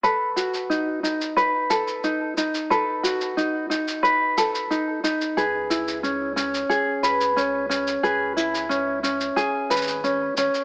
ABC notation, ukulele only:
X:1
M:4/4
L:1/8
Q:1/4=90
K:Bmix
V:1 name="Ukulele"
[AB] F D D B A D D | [AB] F D D B A D D | [GB] E C C G B C C | [GB] E C C G B C C |]